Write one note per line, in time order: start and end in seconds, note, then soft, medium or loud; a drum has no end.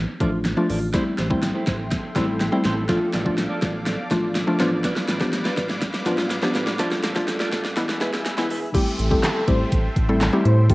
0.08 muted clean electric guitar stroke soft
0.20 0.54 A1 medium
0.20 0.49 F3 medium
0.20 0.49 A3 medium
0.20 0.49 D4 medium
0.20 0.39 F4 medium
0.20 0.49 F4 loud
0.20 0.32 A4 medium
0.20 0.31 D5 medium
0.20 kick medium
0.20 closed hi-hat medium
0.33 muted clean electric guitar stroke soft
0.45 muted clean electric guitar stroke soft
0.45 snare medium
0.45 closed hi-hat medium
0.57 0.86 F3 medium
0.57 0.86 A3 medium
0.57 0.86 D4 medium
0.57 0.86 F4 medium
0.57 0.68 F4 medium
0.57 0.68 A4 medium
0.57 0.69 D5 medium
0.69 1.03 A1 medium
0.69 0.88 F4 medium
0.69 0.81 A4 medium
0.69 0.80 D5 medium
0.69 open hi-hat medium
0.81 muted clean electric guitar stroke soft
0.93 1.22 G3 medium
0.93 1.22 A3 medium
0.93 1.22 C4 medium
0.93 1.12 E4 medium
0.93 1.23 E4 loud
0.93 1.05 G4 medium
0.93 4.56 A4 medium
0.93 1.05 C5 medium
0.93 2.87 E5 medium
0.93 2.87 G5 medium
0.93 2.87 C6 medium
0.93 kick loud
0.93 snare medium
0.93 closed hi-hat medium
1.06 muted clean electric guitar stroke soft
1.18 1.51 A1 medium
1.18 1.30 E4 medium
1.18 1.29 G4 medium
1.18 1.29 C5 medium
1.18 snare medium
1.18 closed hi-hat medium
1.30 1.97 G3 medium
1.30 1.97 A3 medium
1.30 1.97 C4 medium
1.30 1.97 E4 loud
1.30 1.41 E4 medium
1.30 1.42 G4 medium
1.30 1.42 C5 medium
1.30 kick medium
1.43 snare medium
1.43 closed hi-hat loud
1.55 1.65 E4 medium
1.55 1.66 G4 medium
1.55 1.67 C5 medium
1.67 2.00 A1 loud
1.67 1.81 E4 medium
1.67 1.79 G4 medium
1.67 1.78 C5 medium
1.67 kick loud
1.67 snare medium
1.67 closed hi-hat medium
1.79 muted clean electric guitar stroke soft
1.91 kick loud
1.91 snare medium
1.91 closed hi-hat loud
2.03 muted clean electric guitar stroke soft
2.15 2.49 A1 medium
2.15 2.44 G3 medium
2.15 2.44 A3 medium
2.15 2.44 C4 medium
2.15 2.34 E4 medium
2.15 2.44 E4 loud
2.15 2.27 G4 medium
2.15 2.27 C5 medium
2.15 kick medium
2.15 snare medium
2.15 closed hi-hat medium
2.28 muted clean electric guitar stroke soft
2.40 muted clean electric guitar stroke soft
2.40 snare loud
2.40 closed hi-hat loud
2.52 2.81 G3 medium
2.52 2.81 A3 medium
2.52 2.81 C4 medium
2.52 2.81 E4 loud
2.52 2.63 E4 medium
2.52 2.64 G4 medium
2.52 2.64 C5 medium
2.64 2.98 A1 medium
2.64 2.83 E4 medium
2.64 2.76 G4 medium
2.64 2.75 C5 loud
2.64 snare medium
2.64 closed hi-hat medium
2.77 muted clean electric guitar stroke soft
2.89 3.17 F3 medium
2.89 3.17 A3 medium
2.89 3.18 D4 medium
2.89 3.07 F4 medium
2.89 3.18 F4 loud
2.89 3.01 A4 medium
2.89 7.73 D5 medium
2.89 3.00 D5 loud
2.89 4.58 F5 medium
2.89 4.58 D6 medium
2.89 kick loud
2.89 snare loud
2.89 closed hi-hat medium
3.01 muted clean electric guitar stroke soft
3.13 3.47 A1 loud
3.13 3.25 F4 medium
3.13 3.25 A4 medium
3.13 3.24 D5 medium
3.13 snare medium
3.13 closed hi-hat medium
3.25 3.92 F3 medium
3.25 3.92 A3 medium
3.25 3.92 D4 medium
3.25 3.92 F4 loud
3.25 3.36 F4 soft
3.25 3.37 A4 medium
3.25 3.37 D5 medium
3.25 kick medium
3.37 muted clean electric guitar stroke soft
3.37 snare medium
3.37 closed hi-hat loud
3.50 3.60 F4 medium
3.50 3.61 A4 medium
3.50 3.62 D5 medium
3.62 3.95 A1 loud
3.62 3.76 F4 medium
3.62 3.74 A4 medium
3.62 3.73 D5 medium
3.62 kick loud
3.62 snare medium
3.62 closed hi-hat medium
3.74 muted clean electric guitar stroke soft
3.86 muted clean electric guitar stroke soft
3.86 snare loud
3.86 closed hi-hat loud
3.98 muted clean electric guitar stroke soft
4.11 4.44 A1 medium
4.11 4.39 F3 medium
4.11 4.39 A3 medium
4.11 4.39 D4 medium
4.11 4.40 F4 loud
4.11 kick medium
4.11 snare loud
4.11 closed hi-hat medium
4.23 muted clean electric guitar stroke soft
4.35 muted clean electric guitar stroke medium
4.35 snare loud
4.35 closed hi-hat loud
4.47 4.58 F3 medium
4.47 4.60 A3 medium
4.47 4.59 D4 medium
4.47 4.59 F4 medium
4.47 4.58 F4 medium
4.47 4.59 A4 medium
4.47 4.59 D5 medium
4.59 4.93 A1 loud
4.59 5.09 F3 medium
4.59 5.09 B3 medium
4.59 5.09 D4 medium
4.59 4.78 F4 medium
4.59 5.09 F4 loud
4.59 4.71 B4 loud
4.59 6.77 B4 medium
4.59 4.70 D5 loud
4.59 7.74 F5 medium
4.59 7.74 D6 medium
4.59 snare loud
4.59 closed hi-hat medium
4.71 muted clean electric guitar stroke medium
4.84 5.02 F4 medium
4.84 4.95 B4 medium
4.84 4.95 D5 loud
4.84 kick loud
4.84 snare loud
4.84 closed hi-hat medium
4.96 muted clean electric guitar stroke medium
4.96 snare loud
5.08 5.42 A1 medium
5.08 5.20 F4 medium
5.08 5.20 B4 medium
5.08 5.19 D5 medium
5.08 snare loud
5.08 closed hi-hat medium
5.20 5.87 F3 medium
5.20 5.87 B3 medium
5.20 5.87 D4 medium
5.20 5.31 F4 medium
5.20 5.87 G4 loud
5.20 5.32 B4 medium
5.20 5.32 D5 medium
5.20 kick medium
5.20 snare loud
5.33 snare loud
5.33 closed hi-hat loud
5.45 5.55 F4 medium
5.45 5.56 B4 medium
5.45 5.56 D5 medium
5.45 snare loud
5.57 5.91 A1 loud
5.57 5.71 F4 medium
5.57 5.69 B4 medium
5.57 5.68 D5 medium
5.57 kick loud
5.57 snare loud
5.57 closed hi-hat medium
5.69 muted clean electric guitar stroke soft
5.69 snare loud
5.82 kick loud
5.82 snare loud
5.82 closed hi-hat loud
5.93 muted clean electric guitar stroke medium
5.93 snare loud
6.05 6.39 A1 medium
6.05 6.35 F3 medium
6.05 6.35 B3 medium
6.05 6.35 D4 medium
6.05 6.24 F4 medium
6.05 6.35 F4 loud
6.05 6.17 B4 medium
6.05 6.17 D5 medium
6.05 kick medium
6.05 snare loud
6.05 closed hi-hat medium
6.18 muted clean electric guitar stroke soft
6.18 snare loud
6.30 muted clean electric guitar stroke soft
6.30 snare loud
6.30 closed hi-hat loud
6.42 6.71 F3 medium
6.42 6.71 B3 medium
6.42 6.71 D4 medium
6.42 6.53 F4 medium
6.42 6.71 G4 loud
6.42 6.54 B4 medium
6.42 6.54 D5 medium
6.42 snare loud
6.54 6.88 A1 loud
6.54 6.73 F4 medium
6.54 6.66 B4 medium
6.54 6.65 D5 medium
6.54 snare loud
6.54 closed hi-hat medium
6.67 muted clean electric guitar stroke soft
6.67 snare loud
6.79 7.08 F3 medium
6.79 7.08 A3 medium
6.79 7.08 D4 medium
6.79 6.98 F4 medium
6.79 7.08 F4 loud
6.79 6.91 A4 loud
6.79 7.76 A4 medium
6.79 6.90 D5 loud
6.79 kick loud
6.79 snare loud
6.79 closed hi-hat medium
6.91 muted clean electric guitar stroke soft
6.91 snare loud
7.03 7.37 A1 medium
7.03 7.15 F4 medium
7.03 7.15 A4 medium
7.03 7.14 D5 medium
7.03 snare loud
7.03 closed hi-hat medium
7.15 7.77 F3 medium
7.15 7.77 A3 medium
7.15 7.77 D4 medium
7.15 7.77 F4 loud
7.15 7.27 F4 medium
7.15 7.27 A4 medium
7.15 7.27 D5 medium
7.15 kick medium
7.15 snare loud
7.28 muted clean electric guitar stroke soft
7.28 snare loud
7.28 closed hi-hat loud
7.40 7.51 F4 medium
7.40 7.52 A4 medium
7.40 7.52 D5 medium
7.40 snare loud
7.52 7.86 A1 loud
7.52 7.67 F4 medium
7.52 7.64 A4 medium
7.52 7.63 D5 medium
7.52 kick loud
7.52 snare loud
7.52 closed hi-hat medium
7.65 muted clean electric guitar stroke soft
7.65 snare loud
7.76 7.96 E3 medium
7.76 7.96 G#3 medium
7.76 7.96 B3 medium
7.76 7.96 E4 loud
7.76 8.74 B4 medium
7.76 8.74 E5 medium
7.76 8.74 G#5 medium
7.76 8.73 E6 medium
7.76 snare loud
7.76 closed hi-hat loud
7.89 muted clean electric guitar stroke soft
7.89 snare loud
8.00 8.34 E1 medium
8.00 8.29 E3 medium
8.00 8.29 G#3 medium
8.00 8.29 B3 medium
8.00 8.30 E4 loud
8.00 8.20 G#4 medium
8.00 8.13 B4 medium
8.00 8.12 E5 medium
8.00 kick loud
8.00 snare loud
8.00 closed hi-hat medium
8.13 muted clean electric guitar stroke soft
8.13 snare loud
8.25 muted clean electric guitar stroke medium
8.25 snare loud
8.25 closed hi-hat loud
8.37 8.66 E3 medium
8.37 8.66 G#3 medium
8.37 8.66 B3 medium
8.37 8.66 E4 loud
8.37 8.49 G#4 medium
8.37 8.49 B4 medium
8.37 8.50 E5 medium
8.37 snare loud
8.50 8.67 E1 loud
8.50 8.69 G#4 medium
8.50 8.62 B4 medium
8.50 8.61 E5 loud
8.50 open hi-hat medium
8.62 muted clean electric guitar stroke soft
8.74 9.03 G3 medium
8.74 9.03 A3 medium
8.74 9.03 C4 medium
8.74 9.03 E4 medium
8.74 8.84 G4 loud
8.74 9.03 G4 medium
8.74 10.68 A4 medium
8.74 10.68 E5 medium
8.74 10.68 G5 medium
8.74 10.68 C6 loud
8.74 kick loud
8.74 closed hi-hat loud
8.74 crash loud
8.74 downlifter medium
8.99 9.16 A1 medium
8.99 closed hi-hat medium
9.11 9.39 G3 medium
9.11 9.39 A3 medium
9.11 9.39 C4 medium
9.11 9.39 E4 medium
9.11 9.40 G4 medium
9.11 9.21 A4 medium
9.11 kick medium
9.23 9.43 A4 medium
9.23 snare loud
9.23 clap loud
9.23 closed hi-hat loud
9.47 9.64 A1 medium
9.47 9.95 G3 medium
9.47 9.95 A3 medium
9.47 9.95 C4 medium
9.47 9.95 E4 medium
9.47 9.95 G4 medium
9.47 9.58 C5 medium
9.47 kick loud
9.47 closed hi-hat medium
9.72 9.89 A1 loud
9.72 kick loud
9.72 closed hi-hat loud
9.96 10.29 A1 medium
9.96 kick medium
9.96 closed hi-hat medium
10.09 10.28 G3 medium
10.09 10.28 A3 medium
10.09 10.28 C4 medium
10.09 10.28 E4 medium
10.09 10.28 A4 loud
10.21 snare loud
10.21 clap loud
10.21 closed hi-hat loud
10.33 10.61 G3 medium
10.33 10.61 A3 medium
10.33 10.61 C4 medium
10.33 10.62 E4 medium
10.33 10.62 G4 medium
10.45 10.74 A2 medium
10.45 10.55 C5 medium
10.45 closed hi-hat medium
10.69 10.74 F3 medium
10.69 10.74 A3 medium
10.69 10.74 D4 medium
10.69 10.74 F4 medium
10.69 10.74 G4 loud
10.69 10.74 A4 medium
10.69 10.74 D5 medium
10.69 10.74 F5 medium
10.69 10.74 D6 loud
10.69 kick loud
10.69 closed hi-hat medium